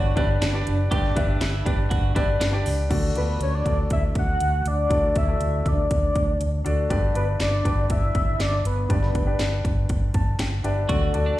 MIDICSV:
0, 0, Header, 1, 6, 480
1, 0, Start_track
1, 0, Key_signature, 2, "major"
1, 0, Tempo, 498753
1, 880, Time_signature, 4, 2, 24, 8
1, 10968, End_track
2, 0, Start_track
2, 0, Title_t, "Soft synth lead"
2, 0, Program_c, 0, 80
2, 3052, Note_on_c, 0, 71, 75
2, 3270, Note_off_c, 0, 71, 0
2, 3300, Note_on_c, 0, 73, 88
2, 3403, Note_off_c, 0, 73, 0
2, 3416, Note_on_c, 0, 74, 90
2, 3521, Note_off_c, 0, 74, 0
2, 3542, Note_on_c, 0, 74, 70
2, 3645, Note_off_c, 0, 74, 0
2, 3776, Note_on_c, 0, 76, 93
2, 3880, Note_off_c, 0, 76, 0
2, 4028, Note_on_c, 0, 78, 102
2, 4500, Note_on_c, 0, 74, 93
2, 4514, Note_off_c, 0, 78, 0
2, 4971, Note_off_c, 0, 74, 0
2, 4981, Note_on_c, 0, 76, 90
2, 5467, Note_on_c, 0, 74, 81
2, 5482, Note_off_c, 0, 76, 0
2, 6415, Note_off_c, 0, 74, 0
2, 6893, Note_on_c, 0, 71, 72
2, 6999, Note_off_c, 0, 71, 0
2, 7134, Note_on_c, 0, 74, 86
2, 7575, Note_off_c, 0, 74, 0
2, 7617, Note_on_c, 0, 76, 95
2, 8094, Note_on_c, 0, 74, 91
2, 8108, Note_off_c, 0, 76, 0
2, 8208, Note_off_c, 0, 74, 0
2, 8214, Note_on_c, 0, 74, 85
2, 8265, Note_off_c, 0, 74, 0
2, 8336, Note_on_c, 0, 71, 84
2, 9010, Note_off_c, 0, 71, 0
2, 10968, End_track
3, 0, Start_track
3, 0, Title_t, "Grand piano"
3, 0, Program_c, 1, 0
3, 0, Control_c, 1, 64, 127
3, 0, Note_on_c, 1, 43, 72
3, 0, Note_on_c, 1, 62, 91
3, 0, Note_on_c, 1, 67, 80
3, 0, Note_on_c, 1, 71, 78
3, 0, Note_on_c, 1, 73, 78
3, 0, Note_on_c, 1, 74, 94
3, 100, Note_off_c, 1, 74, 0
3, 151, Note_off_c, 1, 62, 0
3, 151, Note_on_c, 1, 62, 92
3, 155, Note_off_c, 1, 67, 0
3, 155, Note_on_c, 1, 67, 83
3, 161, Note_off_c, 1, 71, 0
3, 161, Note_on_c, 1, 71, 85
3, 165, Note_on_c, 1, 74, 92
3, 447, Note_off_c, 1, 62, 0
3, 450, Note_off_c, 1, 67, 0
3, 453, Note_off_c, 1, 71, 0
3, 454, Note_off_c, 1, 74, 0
3, 513, Note_on_c, 1, 62, 78
3, 516, Note_on_c, 1, 67, 77
3, 520, Note_on_c, 1, 71, 70
3, 528, Note_on_c, 1, 74, 92
3, 809, Note_off_c, 1, 62, 0
3, 810, Note_off_c, 1, 67, 0
3, 812, Note_off_c, 1, 71, 0
3, 816, Note_off_c, 1, 74, 0
3, 873, Note_on_c, 1, 62, 81
3, 875, Note_on_c, 1, 67, 76
3, 880, Note_off_c, 1, 43, 0
3, 880, Note_on_c, 1, 43, 76
3, 880, Note_on_c, 1, 71, 74
3, 887, Note_on_c, 1, 74, 100
3, 1071, Note_off_c, 1, 62, 0
3, 1072, Note_off_c, 1, 67, 0
3, 1075, Note_off_c, 1, 71, 0
3, 1078, Note_off_c, 1, 74, 0
3, 1106, Note_on_c, 1, 62, 81
3, 1111, Note_on_c, 1, 67, 74
3, 1116, Note_on_c, 1, 71, 79
3, 1121, Note_on_c, 1, 76, 93
3, 1503, Note_off_c, 1, 62, 0
3, 1505, Note_off_c, 1, 67, 0
3, 1508, Note_off_c, 1, 71, 0
3, 1510, Note_off_c, 1, 76, 0
3, 1562, Note_off_c, 1, 43, 0
3, 1586, Note_on_c, 1, 62, 80
3, 1591, Note_on_c, 1, 67, 71
3, 1596, Note_on_c, 1, 71, 76
3, 1602, Note_on_c, 1, 74, 83
3, 1983, Note_off_c, 1, 62, 0
3, 1985, Note_off_c, 1, 67, 0
3, 1988, Note_off_c, 1, 71, 0
3, 1991, Note_off_c, 1, 74, 0
3, 2065, Note_on_c, 1, 62, 85
3, 2068, Note_on_c, 1, 67, 73
3, 2075, Note_on_c, 1, 71, 80
3, 2080, Note_on_c, 1, 74, 97
3, 2365, Note_off_c, 1, 62, 0
3, 2367, Note_off_c, 1, 67, 0
3, 2370, Note_off_c, 1, 71, 0
3, 2372, Note_off_c, 1, 74, 0
3, 2423, Note_on_c, 1, 62, 73
3, 2430, Note_on_c, 1, 67, 78
3, 2433, Note_on_c, 1, 71, 71
3, 2440, Note_on_c, 1, 74, 89
3, 2724, Note_off_c, 1, 62, 0
3, 2727, Note_off_c, 1, 67, 0
3, 2729, Note_off_c, 1, 71, 0
3, 2732, Note_off_c, 1, 74, 0
3, 2783, Note_on_c, 1, 62, 67
3, 2789, Note_on_c, 1, 66, 69
3, 2793, Note_on_c, 1, 50, 62
3, 2795, Note_on_c, 1, 69, 71
3, 2798, Note_on_c, 1, 74, 73
3, 2814, Control_c, 1, 64, 0
3, 2820, Note_off_c, 1, 73, 0
3, 2971, Control_c, 1, 64, 127
3, 2987, Note_off_c, 1, 62, 0
3, 2990, Note_off_c, 1, 66, 0
3, 2993, Note_off_c, 1, 69, 0
3, 2994, Note_off_c, 1, 74, 0
3, 3026, Note_on_c, 1, 62, 59
3, 3030, Note_on_c, 1, 65, 44
3, 3036, Note_on_c, 1, 69, 52
3, 3040, Note_on_c, 1, 74, 63
3, 3091, Note_on_c, 1, 66, 54
3, 3093, Note_off_c, 1, 65, 0
3, 3423, Note_off_c, 1, 62, 0
3, 3428, Note_off_c, 1, 69, 0
3, 3430, Note_off_c, 1, 74, 0
3, 3455, Note_off_c, 1, 66, 0
3, 3479, Note_off_c, 1, 50, 0
3, 3507, Note_on_c, 1, 62, 58
3, 3511, Note_on_c, 1, 66, 50
3, 3518, Note_on_c, 1, 69, 55
3, 3524, Note_on_c, 1, 74, 64
3, 4294, Note_off_c, 1, 62, 0
3, 4296, Note_off_c, 1, 66, 0
3, 4299, Note_off_c, 1, 69, 0
3, 4302, Note_off_c, 1, 74, 0
3, 4707, Note_on_c, 1, 62, 60
3, 4710, Note_on_c, 1, 66, 55
3, 4713, Note_on_c, 1, 50, 48
3, 4715, Note_on_c, 1, 69, 58
3, 4720, Note_on_c, 1, 74, 69
3, 5007, Note_off_c, 1, 62, 0
3, 5008, Note_off_c, 1, 66, 0
3, 5011, Note_off_c, 1, 69, 0
3, 5013, Note_off_c, 1, 74, 0
3, 5072, Note_on_c, 1, 62, 59
3, 5074, Note_on_c, 1, 66, 53
3, 5079, Note_on_c, 1, 69, 48
3, 5084, Note_on_c, 1, 74, 61
3, 5399, Note_off_c, 1, 50, 0
3, 5857, Note_off_c, 1, 62, 0
3, 5857, Note_off_c, 1, 66, 0
3, 5860, Note_off_c, 1, 69, 0
3, 5863, Note_off_c, 1, 74, 0
3, 6396, Note_on_c, 1, 62, 79
3, 6398, Note_on_c, 1, 66, 65
3, 6405, Note_on_c, 1, 69, 71
3, 6409, Note_on_c, 1, 74, 78
3, 6594, Note_off_c, 1, 62, 0
3, 6595, Note_off_c, 1, 66, 0
3, 6599, Note_off_c, 1, 69, 0
3, 6601, Note_off_c, 1, 74, 0
3, 6635, Note_on_c, 1, 62, 76
3, 6640, Note_on_c, 1, 67, 69
3, 6642, Note_on_c, 1, 43, 71
3, 6645, Note_on_c, 1, 71, 68
3, 6649, Note_on_c, 1, 74, 87
3, 6653, Control_c, 1, 64, 0
3, 6798, Control_c, 1, 64, 127
3, 6834, Note_off_c, 1, 62, 0
3, 6836, Note_off_c, 1, 67, 0
3, 6839, Note_off_c, 1, 71, 0
3, 6840, Note_off_c, 1, 74, 0
3, 6873, Note_on_c, 1, 62, 62
3, 6879, Note_on_c, 1, 67, 54
3, 6880, Note_on_c, 1, 71, 63
3, 6886, Note_on_c, 1, 74, 73
3, 7267, Note_off_c, 1, 62, 0
3, 7271, Note_off_c, 1, 67, 0
3, 7271, Note_off_c, 1, 71, 0
3, 7274, Note_off_c, 1, 74, 0
3, 7324, Note_off_c, 1, 43, 0
3, 7355, Note_on_c, 1, 62, 68
3, 7359, Note_on_c, 1, 67, 57
3, 7364, Note_on_c, 1, 71, 57
3, 7370, Note_on_c, 1, 74, 71
3, 8138, Note_off_c, 1, 62, 0
3, 8140, Note_off_c, 1, 67, 0
3, 8143, Note_off_c, 1, 71, 0
3, 8145, Note_off_c, 1, 74, 0
3, 8551, Note_on_c, 1, 62, 64
3, 8559, Note_on_c, 1, 67, 59
3, 8562, Note_on_c, 1, 43, 57
3, 8562, Note_on_c, 1, 71, 53
3, 8569, Note_on_c, 1, 74, 73
3, 8849, Note_off_c, 1, 62, 0
3, 8853, Note_off_c, 1, 67, 0
3, 8855, Note_off_c, 1, 71, 0
3, 8858, Note_off_c, 1, 74, 0
3, 8912, Note_on_c, 1, 62, 64
3, 8916, Note_on_c, 1, 67, 62
3, 8920, Note_on_c, 1, 71, 59
3, 8928, Note_on_c, 1, 74, 72
3, 9243, Note_off_c, 1, 43, 0
3, 9696, Note_off_c, 1, 62, 0
3, 9698, Note_off_c, 1, 67, 0
3, 9700, Note_off_c, 1, 71, 0
3, 9704, Note_off_c, 1, 74, 0
3, 9765, Note_on_c, 1, 81, 65
3, 9987, Note_off_c, 1, 81, 0
3, 10002, Note_on_c, 1, 79, 59
3, 10225, Note_off_c, 1, 79, 0
3, 10239, Note_on_c, 1, 62, 76
3, 10241, Note_on_c, 1, 67, 64
3, 10246, Note_on_c, 1, 71, 66
3, 10246, Note_on_c, 1, 76, 57
3, 10250, Note_on_c, 1, 74, 72
3, 10435, Note_off_c, 1, 62, 0
3, 10436, Note_off_c, 1, 67, 0
3, 10439, Note_off_c, 1, 71, 0
3, 10441, Note_off_c, 1, 74, 0
3, 10467, Note_off_c, 1, 76, 0
3, 10474, Note_on_c, 1, 62, 67
3, 10479, Note_on_c, 1, 66, 67
3, 10481, Note_on_c, 1, 50, 64
3, 10484, Note_on_c, 1, 69, 73
3, 10489, Note_on_c, 1, 74, 77
3, 10492, Control_c, 1, 64, 0
3, 10672, Note_off_c, 1, 62, 0
3, 10673, Control_c, 1, 64, 127
3, 10675, Note_off_c, 1, 66, 0
3, 10677, Note_off_c, 1, 69, 0
3, 10680, Note_off_c, 1, 74, 0
3, 10714, Note_on_c, 1, 62, 68
3, 10718, Note_on_c, 1, 66, 72
3, 10723, Note_on_c, 1, 69, 64
3, 10727, Note_on_c, 1, 74, 80
3, 10968, Note_off_c, 1, 50, 0
3, 10968, Note_off_c, 1, 62, 0
3, 10968, Note_off_c, 1, 66, 0
3, 10968, Note_off_c, 1, 69, 0
3, 10968, Note_off_c, 1, 74, 0
3, 10968, End_track
4, 0, Start_track
4, 0, Title_t, "Clean electric guitar"
4, 0, Program_c, 2, 27
4, 0, Note_on_c, 2, 66, 68
4, 148, Note_off_c, 2, 66, 0
4, 164, Note_on_c, 2, 64, 82
4, 276, Note_off_c, 2, 64, 0
4, 401, Note_on_c, 2, 62, 83
4, 739, Note_off_c, 2, 62, 0
4, 877, Note_on_c, 2, 67, 95
4, 1106, Note_off_c, 2, 67, 0
4, 1116, Note_on_c, 2, 62, 75
4, 1346, Note_off_c, 2, 62, 0
4, 1358, Note_on_c, 2, 64, 74
4, 1587, Note_off_c, 2, 64, 0
4, 1595, Note_on_c, 2, 62, 73
4, 1711, Note_off_c, 2, 62, 0
4, 1833, Note_on_c, 2, 66, 71
4, 2064, Note_off_c, 2, 66, 0
4, 2073, Note_on_c, 2, 64, 75
4, 2190, Note_off_c, 2, 64, 0
4, 2315, Note_on_c, 2, 62, 74
4, 2656, Note_off_c, 2, 62, 0
4, 10479, Note_on_c, 2, 66, 90
4, 10708, Note_off_c, 2, 66, 0
4, 10839, Note_on_c, 2, 62, 69
4, 10954, Note_off_c, 2, 62, 0
4, 10968, End_track
5, 0, Start_track
5, 0, Title_t, "Fingered electric bass"
5, 0, Program_c, 3, 33
5, 0, Note_on_c, 3, 31, 90
5, 118, Note_off_c, 3, 31, 0
5, 161, Note_on_c, 3, 31, 100
5, 357, Note_off_c, 3, 31, 0
5, 401, Note_on_c, 3, 31, 83
5, 597, Note_off_c, 3, 31, 0
5, 642, Note_on_c, 3, 30, 87
5, 838, Note_off_c, 3, 30, 0
5, 882, Note_on_c, 3, 31, 111
5, 1078, Note_off_c, 3, 31, 0
5, 1123, Note_on_c, 3, 31, 75
5, 1318, Note_off_c, 3, 31, 0
5, 1363, Note_on_c, 3, 31, 79
5, 1558, Note_off_c, 3, 31, 0
5, 1599, Note_on_c, 3, 31, 94
5, 1797, Note_off_c, 3, 31, 0
5, 1842, Note_on_c, 3, 31, 96
5, 2038, Note_off_c, 3, 31, 0
5, 2078, Note_on_c, 3, 31, 84
5, 2276, Note_off_c, 3, 31, 0
5, 2320, Note_on_c, 3, 31, 79
5, 2517, Note_off_c, 3, 31, 0
5, 2563, Note_on_c, 3, 37, 71
5, 2759, Note_off_c, 3, 37, 0
5, 2798, Note_on_c, 3, 38, 91
5, 2996, Note_off_c, 3, 38, 0
5, 3037, Note_on_c, 3, 38, 74
5, 3236, Note_off_c, 3, 38, 0
5, 3277, Note_on_c, 3, 38, 86
5, 3475, Note_off_c, 3, 38, 0
5, 3520, Note_on_c, 3, 38, 96
5, 3717, Note_off_c, 3, 38, 0
5, 3760, Note_on_c, 3, 38, 73
5, 3957, Note_off_c, 3, 38, 0
5, 3999, Note_on_c, 3, 38, 72
5, 4197, Note_off_c, 3, 38, 0
5, 4246, Note_on_c, 3, 38, 77
5, 4441, Note_off_c, 3, 38, 0
5, 4482, Note_on_c, 3, 38, 79
5, 4679, Note_off_c, 3, 38, 0
5, 4721, Note_on_c, 3, 38, 101
5, 4918, Note_off_c, 3, 38, 0
5, 4965, Note_on_c, 3, 38, 78
5, 5161, Note_off_c, 3, 38, 0
5, 5202, Note_on_c, 3, 38, 89
5, 5399, Note_off_c, 3, 38, 0
5, 5444, Note_on_c, 3, 38, 90
5, 5640, Note_off_c, 3, 38, 0
5, 5686, Note_on_c, 3, 38, 79
5, 5882, Note_off_c, 3, 38, 0
5, 5925, Note_on_c, 3, 38, 90
5, 6121, Note_off_c, 3, 38, 0
5, 6162, Note_on_c, 3, 38, 76
5, 6359, Note_off_c, 3, 38, 0
5, 6405, Note_on_c, 3, 38, 71
5, 6601, Note_off_c, 3, 38, 0
5, 6643, Note_on_c, 3, 31, 102
5, 6840, Note_off_c, 3, 31, 0
5, 6887, Note_on_c, 3, 31, 69
5, 7082, Note_off_c, 3, 31, 0
5, 7128, Note_on_c, 3, 31, 88
5, 7323, Note_off_c, 3, 31, 0
5, 7365, Note_on_c, 3, 31, 107
5, 7561, Note_off_c, 3, 31, 0
5, 7607, Note_on_c, 3, 31, 93
5, 7802, Note_off_c, 3, 31, 0
5, 7845, Note_on_c, 3, 31, 85
5, 8041, Note_off_c, 3, 31, 0
5, 8092, Note_on_c, 3, 31, 83
5, 8285, Note_off_c, 3, 31, 0
5, 8329, Note_on_c, 3, 31, 81
5, 8523, Note_off_c, 3, 31, 0
5, 8567, Note_on_c, 3, 31, 90
5, 8762, Note_off_c, 3, 31, 0
5, 8808, Note_on_c, 3, 31, 77
5, 9002, Note_off_c, 3, 31, 0
5, 9054, Note_on_c, 3, 31, 77
5, 9246, Note_off_c, 3, 31, 0
5, 9286, Note_on_c, 3, 31, 87
5, 9481, Note_off_c, 3, 31, 0
5, 9527, Note_on_c, 3, 31, 80
5, 9721, Note_off_c, 3, 31, 0
5, 9766, Note_on_c, 3, 31, 77
5, 9961, Note_off_c, 3, 31, 0
5, 10010, Note_on_c, 3, 31, 83
5, 10203, Note_off_c, 3, 31, 0
5, 10244, Note_on_c, 3, 31, 81
5, 10440, Note_off_c, 3, 31, 0
5, 10485, Note_on_c, 3, 38, 96
5, 10680, Note_off_c, 3, 38, 0
5, 10725, Note_on_c, 3, 38, 68
5, 10920, Note_off_c, 3, 38, 0
5, 10968, End_track
6, 0, Start_track
6, 0, Title_t, "Drums"
6, 161, Note_on_c, 9, 36, 90
6, 162, Note_on_c, 9, 42, 63
6, 257, Note_off_c, 9, 36, 0
6, 258, Note_off_c, 9, 42, 0
6, 404, Note_on_c, 9, 38, 101
6, 404, Note_on_c, 9, 42, 86
6, 409, Note_on_c, 9, 39, 82
6, 500, Note_off_c, 9, 38, 0
6, 500, Note_off_c, 9, 42, 0
6, 505, Note_off_c, 9, 39, 0
6, 643, Note_on_c, 9, 42, 80
6, 740, Note_off_c, 9, 42, 0
6, 881, Note_on_c, 9, 36, 105
6, 881, Note_on_c, 9, 42, 78
6, 977, Note_off_c, 9, 36, 0
6, 978, Note_off_c, 9, 42, 0
6, 1003, Note_on_c, 9, 38, 33
6, 1099, Note_off_c, 9, 38, 0
6, 1122, Note_on_c, 9, 42, 79
6, 1123, Note_on_c, 9, 36, 90
6, 1218, Note_off_c, 9, 42, 0
6, 1220, Note_off_c, 9, 36, 0
6, 1358, Note_on_c, 9, 38, 100
6, 1359, Note_on_c, 9, 42, 82
6, 1363, Note_on_c, 9, 39, 74
6, 1454, Note_off_c, 9, 38, 0
6, 1456, Note_off_c, 9, 42, 0
6, 1459, Note_off_c, 9, 39, 0
6, 1600, Note_on_c, 9, 36, 89
6, 1602, Note_on_c, 9, 42, 72
6, 1696, Note_off_c, 9, 36, 0
6, 1698, Note_off_c, 9, 42, 0
6, 1839, Note_on_c, 9, 42, 84
6, 1841, Note_on_c, 9, 36, 86
6, 1935, Note_off_c, 9, 42, 0
6, 1937, Note_off_c, 9, 36, 0
6, 2078, Note_on_c, 9, 36, 86
6, 2080, Note_on_c, 9, 42, 68
6, 2175, Note_off_c, 9, 36, 0
6, 2176, Note_off_c, 9, 42, 0
6, 2321, Note_on_c, 9, 38, 106
6, 2321, Note_on_c, 9, 42, 92
6, 2326, Note_on_c, 9, 39, 83
6, 2417, Note_off_c, 9, 38, 0
6, 2417, Note_off_c, 9, 42, 0
6, 2422, Note_off_c, 9, 39, 0
6, 2559, Note_on_c, 9, 46, 79
6, 2656, Note_off_c, 9, 46, 0
6, 2797, Note_on_c, 9, 36, 96
6, 2797, Note_on_c, 9, 42, 71
6, 2798, Note_on_c, 9, 49, 77
6, 2893, Note_off_c, 9, 36, 0
6, 2893, Note_off_c, 9, 42, 0
6, 2894, Note_off_c, 9, 49, 0
6, 3036, Note_on_c, 9, 42, 70
6, 3133, Note_off_c, 9, 42, 0
6, 3278, Note_on_c, 9, 42, 69
6, 3374, Note_off_c, 9, 42, 0
6, 3519, Note_on_c, 9, 36, 67
6, 3521, Note_on_c, 9, 42, 61
6, 3615, Note_off_c, 9, 36, 0
6, 3617, Note_off_c, 9, 42, 0
6, 3756, Note_on_c, 9, 42, 73
6, 3760, Note_on_c, 9, 36, 80
6, 3853, Note_off_c, 9, 42, 0
6, 3856, Note_off_c, 9, 36, 0
6, 3997, Note_on_c, 9, 42, 61
6, 3998, Note_on_c, 9, 36, 85
6, 4093, Note_off_c, 9, 42, 0
6, 4094, Note_off_c, 9, 36, 0
6, 4239, Note_on_c, 9, 42, 78
6, 4335, Note_off_c, 9, 42, 0
6, 4481, Note_on_c, 9, 42, 68
6, 4577, Note_off_c, 9, 42, 0
6, 4721, Note_on_c, 9, 36, 94
6, 4721, Note_on_c, 9, 42, 66
6, 4817, Note_off_c, 9, 36, 0
6, 4818, Note_off_c, 9, 42, 0
6, 4961, Note_on_c, 9, 42, 65
6, 4965, Note_on_c, 9, 36, 84
6, 5058, Note_off_c, 9, 42, 0
6, 5061, Note_off_c, 9, 36, 0
6, 5203, Note_on_c, 9, 42, 66
6, 5299, Note_off_c, 9, 42, 0
6, 5444, Note_on_c, 9, 36, 72
6, 5447, Note_on_c, 9, 42, 59
6, 5540, Note_off_c, 9, 36, 0
6, 5543, Note_off_c, 9, 42, 0
6, 5685, Note_on_c, 9, 42, 80
6, 5686, Note_on_c, 9, 36, 76
6, 5781, Note_off_c, 9, 42, 0
6, 5782, Note_off_c, 9, 36, 0
6, 5924, Note_on_c, 9, 36, 77
6, 5924, Note_on_c, 9, 42, 60
6, 6020, Note_off_c, 9, 36, 0
6, 6020, Note_off_c, 9, 42, 0
6, 6166, Note_on_c, 9, 42, 69
6, 6262, Note_off_c, 9, 42, 0
6, 6407, Note_on_c, 9, 42, 68
6, 6503, Note_off_c, 9, 42, 0
6, 6645, Note_on_c, 9, 36, 101
6, 6646, Note_on_c, 9, 42, 73
6, 6741, Note_off_c, 9, 36, 0
6, 6742, Note_off_c, 9, 42, 0
6, 6885, Note_on_c, 9, 42, 75
6, 6981, Note_off_c, 9, 42, 0
6, 7122, Note_on_c, 9, 38, 84
6, 7124, Note_on_c, 9, 42, 71
6, 7127, Note_on_c, 9, 39, 75
6, 7218, Note_off_c, 9, 38, 0
6, 7220, Note_off_c, 9, 42, 0
6, 7223, Note_off_c, 9, 39, 0
6, 7365, Note_on_c, 9, 36, 73
6, 7367, Note_on_c, 9, 42, 64
6, 7461, Note_off_c, 9, 36, 0
6, 7463, Note_off_c, 9, 42, 0
6, 7601, Note_on_c, 9, 42, 76
6, 7605, Note_on_c, 9, 36, 80
6, 7697, Note_off_c, 9, 42, 0
6, 7701, Note_off_c, 9, 36, 0
6, 7842, Note_on_c, 9, 42, 58
6, 7843, Note_on_c, 9, 36, 77
6, 7939, Note_off_c, 9, 36, 0
6, 7939, Note_off_c, 9, 42, 0
6, 8085, Note_on_c, 9, 38, 85
6, 8085, Note_on_c, 9, 42, 70
6, 8090, Note_on_c, 9, 39, 75
6, 8181, Note_off_c, 9, 38, 0
6, 8181, Note_off_c, 9, 42, 0
6, 8186, Note_off_c, 9, 39, 0
6, 8328, Note_on_c, 9, 42, 67
6, 8424, Note_off_c, 9, 42, 0
6, 8565, Note_on_c, 9, 36, 109
6, 8566, Note_on_c, 9, 42, 72
6, 8661, Note_off_c, 9, 36, 0
6, 8662, Note_off_c, 9, 42, 0
6, 8687, Note_on_c, 9, 38, 29
6, 8783, Note_off_c, 9, 38, 0
6, 8806, Note_on_c, 9, 42, 70
6, 8807, Note_on_c, 9, 36, 83
6, 8902, Note_off_c, 9, 42, 0
6, 8903, Note_off_c, 9, 36, 0
6, 9041, Note_on_c, 9, 38, 87
6, 9043, Note_on_c, 9, 42, 69
6, 9046, Note_on_c, 9, 39, 75
6, 9137, Note_off_c, 9, 38, 0
6, 9139, Note_off_c, 9, 42, 0
6, 9142, Note_off_c, 9, 39, 0
6, 9285, Note_on_c, 9, 36, 78
6, 9287, Note_on_c, 9, 42, 62
6, 9381, Note_off_c, 9, 36, 0
6, 9383, Note_off_c, 9, 42, 0
6, 9521, Note_on_c, 9, 42, 71
6, 9525, Note_on_c, 9, 36, 77
6, 9617, Note_off_c, 9, 42, 0
6, 9621, Note_off_c, 9, 36, 0
6, 9760, Note_on_c, 9, 42, 62
6, 9763, Note_on_c, 9, 36, 79
6, 9857, Note_off_c, 9, 42, 0
6, 9859, Note_off_c, 9, 36, 0
6, 10001, Note_on_c, 9, 38, 98
6, 10001, Note_on_c, 9, 42, 83
6, 10006, Note_on_c, 9, 39, 73
6, 10097, Note_off_c, 9, 42, 0
6, 10098, Note_off_c, 9, 38, 0
6, 10103, Note_off_c, 9, 39, 0
6, 10244, Note_on_c, 9, 42, 73
6, 10341, Note_off_c, 9, 42, 0
6, 10483, Note_on_c, 9, 36, 102
6, 10483, Note_on_c, 9, 42, 77
6, 10579, Note_off_c, 9, 42, 0
6, 10580, Note_off_c, 9, 36, 0
6, 10722, Note_on_c, 9, 42, 68
6, 10818, Note_off_c, 9, 42, 0
6, 10968, End_track
0, 0, End_of_file